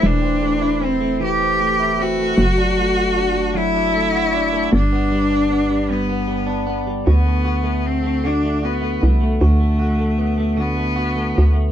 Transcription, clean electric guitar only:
X:1
M:6/8
L:1/16
Q:3/8=51
K:Dmix
V:1 name="Clean electric guitar"
[E,A,CE] C A, E C A, E, C A, E C A, | F, D A, F D A, F, D A, F D A, | G,, B, G, D B, G, G,, B, G, D B, G, | [D,F] A, F A,2 A, [D,F] A, F A, B, A, |
[D,F] A, F A, B, A, [D,F] A, F A, B, A, |]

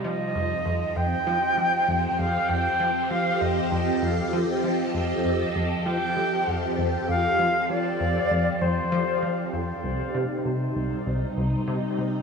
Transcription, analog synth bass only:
X:1
M:4/4
L:1/8
Q:1/4=98
K:Fmix
V:1 name="Analog synth bass" clef=bass
F, F,, F,, F,, F, F, F,, F,, | F,, F, F, F,, F,, F,, F, F, | F,, F,, F,, F, F, F,, F,, F,, | F, F, F,, F,, F,, F, F, F,, |
C,, C, C, C,, C,, C,, C, C, |]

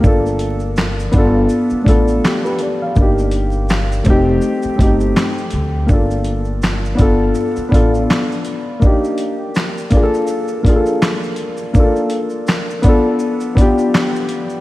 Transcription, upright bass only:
X:1
M:4/4
L:1/8
Q:"Swing 16ths" 1/4=82
K:Gm
V:1 name="Upright bass" clef=bass
G,,,3 G,,, z A,,, z2 | G,,,3 F,,, z G,,, z D,, | G,,,3 G,,, z A,,, z2 | z8 |
z8 |]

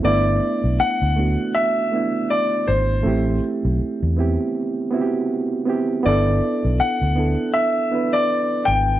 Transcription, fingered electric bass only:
X:1
M:4/4
L:1/16
Q:"Swing 16ths" 1/4=80
K:G
V:1 name="Fingered electric bass" clef=bass
G,,,2 z B,,, z D,,2 z6 z _A,,,2 | A,,,2 z B,,, z E,,2 z8 z | G,,,2 z B,,, z D,,2 z6 z _A,,,2 |]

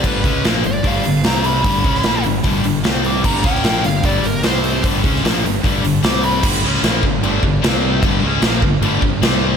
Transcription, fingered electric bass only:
X:1
M:4/4
L:1/8
Q:1/4=150
K:C
V:1 name="Fingered electric bass" clef=bass
G,,, ^C,, _B,,, G,,, G,,, G,,, =C,,2 | G,,, ^C,, _B,,, G,,, G,,, G,,, =C,,2 | G,,, ^C,, _B,,, G,,, G,,, G,,, =C,,2 | G,,, ^C,, _B,,, G,,, G,,, G,,, =C,,2 |
G,,, ^C,, _B,,, G,,, G,,, G,,, =C,,2 | G,,, ^C,, _B,,, G,,, G,,, G,,, =C,,2 |]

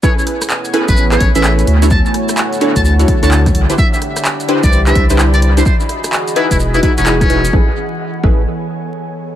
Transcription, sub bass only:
X:1
M:4/4
L:1/16
Q:"Swing 16ths" 1/4=128
K:A
V:1 name="Sub bass" clef=bass
z6 z A,,,3 A,,, A,,,3 D,,2- | D,, z6 D,,3 z D,,3 =C,, z | z6 z =C,,3 C,, C,,4- C,, | z6 z E,,,3 z E,,,3 E,,, z |
A,,, z4 z A,,,2 z8 |]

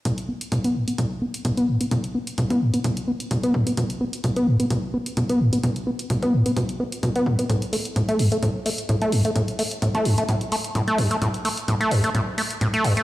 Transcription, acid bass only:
X:1
M:4/4
L:1/16
Q:"Swing 16ths" 1/4=129
K:Ador
V:1 name="Acid bass" clef=bass
B,, z B, z B,, B, A,, B, B,, z B, z B,, B, A,, B, | B,, z B, z B,, B, A,, B, B,, z B, z B,, B, A,, B, | B,, z B, z B,, B, A,, B, B,, z B, z B,, B, A,, B, | B,, z B, z B,, B, A,, B, B,, z B, z B,, B, A,, B, |
A,, z A, z A,, A, G,, A, A,, z A, z A,, A, G,, A, | A,, z A, z A,, A, G,, A, A,, z A, z A,, A, G,, A, | A,, z A, z A,, A, G,, A, A,, z A, z A,, A, G,, A, |]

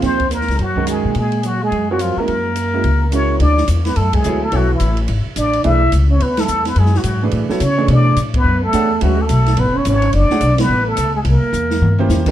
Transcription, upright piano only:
X:1
M:4/4
L:1/8
Q:"Swing" 1/4=214
K:Ebdor
V:1 name="Upright piano"
[F,B,EAc] z4 [E,A,DGB]3 | z4 z [G,CFBd]2 [A,D_FGB] | z3 [A,D_FGB] z2 [A,DFGB]2 | [K:Bdor] z6 [F,B,EAc] z |
[F,B,EAc] z6 z | [E,A,DGB] z6 z | z3 [E,A,DGB]2 [F,B,EAc] z [E,A,DGc]- | [E,A,DGc]2 z4 [A,DGcf] z |
[G,CFBe] z6 z | z [A,DGcf] z6 | z4 z [_B,_DE=G=c]2 [^D,^G,=D=G_B] |]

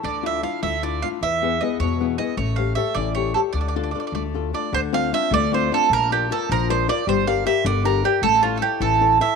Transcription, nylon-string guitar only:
X:1
M:6/8
L:1/8
Q:3/8=103
K:Dm
V:1 name="Nylon-string guitar"
D, [DEF] [DEF] A, [DEF] [DEF] | E, [=B,E^G] [B,EG] =B,, [B,EG] [B,EG] | A, [GA^c] [GAc] E, [GAc] [GAc] | D, [DFA] [DFA] A, [DFA] [DFA] |
D, [CDF] [CDF] A, [CDF] [CDF] | B, [FBd] [FBd] F, [FBd] [FBd] | G, [GBd] [GBd] D, [GBd] [GBd] | A, [EA^c] [EAc] E, [EAc] [EAc] |]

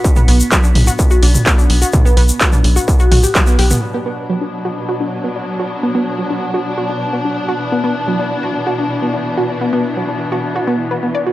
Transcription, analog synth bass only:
X:1
M:4/4
L:1/8
Q:1/4=127
K:Bm
V:1 name="Analog synth bass" clef=bass
z B,,, z B,,, z B,,, z B,,, | z B,,, z B,,, z B,,, z B,,, | z8 | z8 |
z8 | z8 |]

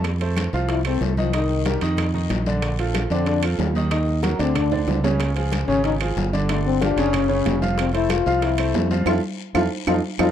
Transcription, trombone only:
X:1
M:4/4
L:1/8
Q:1/4=186
K:Bblyd
V:1 name="Trombone"
z4 E C A, F, | _E,3 z4 z | z3 C D z3 | z3 C D z3 |
z3 _D _E z3 | A, C D2 _D3 z | C E F2 E3 z | F z2 F z F z F |]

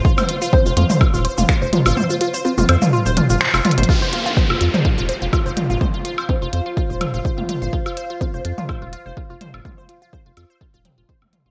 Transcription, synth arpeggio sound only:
X:1
M:4/4
L:1/16
Q:"Swing 16ths" 1/4=125
K:Cphr
V:1 name="Synth arpeggio sound"
F c F F c F F c F F c F F c F F | c F F c F F c F F c F F c F F c | F c F F c F F c F F c F F c F F | c F F c F F c F F c F F c F F c |
F F c F F c F F c F F c F F c F | F c F F c F F c F F C F c z F F |]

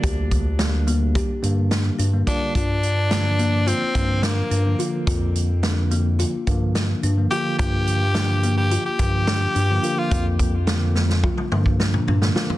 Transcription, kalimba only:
X:1
M:9/8
L:1/8
Q:3/8=71
K:Bb
V:1 name="Kalimba"
G2 D B, G2 D D F | F2 D B, F2 D D F | F2 D B, F2 D D F | F2 D B, F2 D D F |
F2 D B, F2 D D F |]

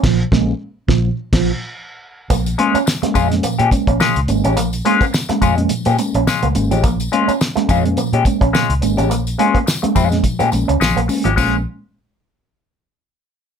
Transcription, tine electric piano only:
X:1
M:4/4
L:1/16
Q:"Swing 16ths" 1/4=106
K:Bbdor
V:1 name="Tine electric piano"
[B,,F,]2 [A,B,D]2 z2 [B,,F,]2 z [B,,F,]2 z4 z | [B,,F,] z [A,B,D] [B,D] z [A,B,D] [B,,F,] [A,B,D] [B,,F,] z [A,B,D] [B,D] [B,,F,] z [A,B,D] [B,D] | [B,,F,] z [A,B,D] [B,D] z [A,B,D] [B,,F,] [A,B,D] [B,,F,] z [A,B,D] [B,D] [B,,F,] z [A,B,D] [B,D] | [B,,F,] z [A,B,D] [B,D] z [A,B,D] [B,,F,] [A,B,D] [B,,F,] z [A,B,D] [B,D] [B,,F,] z [A,B,D] [B,D] |
[B,,F,] z [A,B,D] z2 [A,B,D] [B,,F,] [A,B,D] [B,,F,] z [A,B,D] [B,D] [B,,F,] z [A,B,D] [B,D] | [A,B,D]2 z12 z2 |]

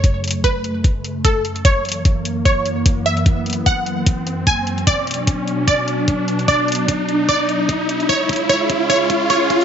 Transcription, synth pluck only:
X:1
M:4/4
L:1/8
Q:"Swing 16ths" 1/4=149
K:Bdor
V:1 name="Synth pluck"
c2 B4 A2 | c4 c3 e- | e2 f4 g2 | d4 d4 |
d4 d4 | c2 c2 c2 c2 |]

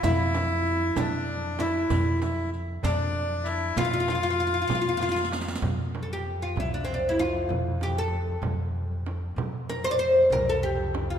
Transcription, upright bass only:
X:1
M:6/8
L:1/8
Q:3/8=64
K:none
V:1 name="Upright bass" clef=bass
F,,3 F,,3 | F,,3 F,,3 | F,,3 F,,3 | F,,3 C,,3 |
F,,3 F,,3 | F,,3 C,,3 |]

